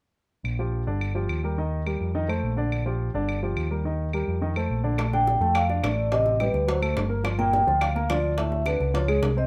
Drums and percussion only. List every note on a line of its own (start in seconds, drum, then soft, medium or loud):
0.45 claves medium
1.01 claves medium
1.29 claves medium
1.87 claves medium
2.30 claves medium
2.72 claves medium
3.29 claves medium
3.57 claves medium
4.13 claves medium
4.56 claves medium
4.98 high bongo medium
4.98 claves medium
5.13 high bongo soft
5.27 high bongo medium
5.42 high bongo soft
5.55 high bongo medium
5.55 claves medium
5.70 high bongo soft
5.84 high bongo medium
5.84 low bongo medium
5.84 claves medium
6.12 high bongo medium
6.26 high bongo soft
6.40 high bongo medium
6.40 claves medium
6.54 high bongo soft
6.69 high bongo medium
6.82 high bongo soft
6.82 claves medium
6.97 high bongo medium
6.97 low bongo medium
7.25 high bongo medium
7.25 claves medium
7.39 high bongo soft
7.53 high bongo medium
7.68 high bongo soft
7.81 high bongo medium
7.81 claves medium
7.96 high bongo soft
8.10 high bongo medium
8.10 low bongo medium
8.10 claves medium
8.38 high bongo medium
8.52 high bongo soft
8.66 high bongo medium
8.66 claves medium
8.81 high bongo soft
8.95 high bongo medium
9.08 high bongo soft
9.08 claves medium
9.23 high bongo medium
9.23 low bongo medium